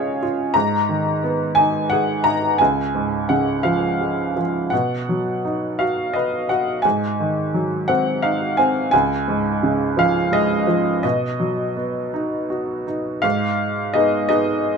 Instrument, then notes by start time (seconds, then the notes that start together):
upright piano
Already playing: C#3 G#3 C#4 F4 G#4 C#5 D#5 F5
0.22 F4
0.54 G#2 A#5
0.89 D#3
1.24 B3
1.55 D#4 G#5
1.90 G#4 F#5
2.24 D#4 A#5
2.58 C#2 G#5
2.95 G#2
3.29 C#3 F#5
3.63 F3 F5
4.01 G#3
4.36 F3
4.70 B2 F#5
5.09 F#3
5.45 D#4
5.79 F#4 F5
6.13 B4 D#5
6.49 F#4 F#5
6.82 G#2 G#5
7.20 D#3
7.54 F#3
7.88 C4 F#5
8.22 D#4 F5
8.57 C4 G#5
8.91 C#2 G#5
9.28 G#2
9.63 C#3
9.97 F3 F5
10.32 G#3 D#5
10.67 F3
11.03 B2 D#5
11.40 F#3
11.77 B3
12.14 D#4
12.50 F#4
12.87 D#4
13.22 G#2 F5
13.94 G#3 B3 D#4 D#5
14.29 G#3 B3 D#4 D#5